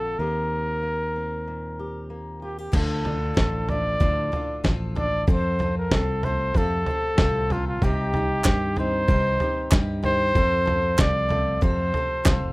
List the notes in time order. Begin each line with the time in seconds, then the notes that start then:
Already playing: A#1 F2 D3 F3 A#3 F4 A4
0.19 D#2 D#3 A#3 C4 G4 A#4
0.83 A#3
1.16 C4
1.48 A#2
1.79 G4
2.10 A#3
2.42 F4 G4
2.58 G4
2.72 D2 D3 F3 D4 F4 A4, kick, floor tom, crash
2.76 A4
3.03 D4 F4 A4, floor tom
3.34 A1 F3 D4 F4 A4, kick, snare, floor tom
3.68 A3 D4 F4 A4 D5, floor tom
4.00 D2 A2 D3 F3 D4 F4 A4, kick, floor tom
4.32 D4 F4 A4, floor tom
4.64 A1 F3 D4 F4 A4, kick, snare, floor tom
4.95 D4 F4 A4 D5, floor tom
5.27 F2 F3 C4 F4 A4, kick, floor tom
5.31 C5
5.59 C4 F4 A4, floor tom
5.78 A#4
5.91 C2 F3 C4 F4 A4, kick, snare, floor tom
6.23 A3 C4 F4 A4 C5, floor tom
6.54 F2 C3 F3 C4 F4 A4, kick, floor tom
6.86 C4 F4 A4, floor tom
6.91 C4
7.18 C2 A2 F3 C4 F4 A4, kick, snare, floor tom
7.50 A#2 C4 F4 A4, floor tom
7.68 F4
7.82 C2 C3 G3 C4 D#4 G4, kick, floor tom
8.13 C4 D#4 G4, floor tom
8.44 G2 D#3 G3 C4 D#4 G4, kick, snare, clap, floor tom
8.76 C4 D#4 G4 C5, floor tom
9.08 C2 G2 C3 G3 C4 D#4 G4, kick, floor tom
9.40 C4 D#4 G4, floor tom
9.71 G2 G3 C4 D#4 G4, kick, snare, clap, floor tom
10.03 D#3 C4 D#4 G4 C5, floor tom
10.35 F2 F3 C4 F4 A4, kick, floor tom
10.65 C4 F4 A4, floor tom
10.97 C2 F3 C4 F4 A4 D5, kick, snare, clap, floor tom
11.29 A3 C4 F4 A4, floor tom
11.61 F2 C3 F3 C4 F4 A4 C5, kick, floor tom
11.93 C4 F4 A4, floor tom
12.24 C2 F3 C4 F4 A4, kick, snare, clap, floor tom
12.41 F1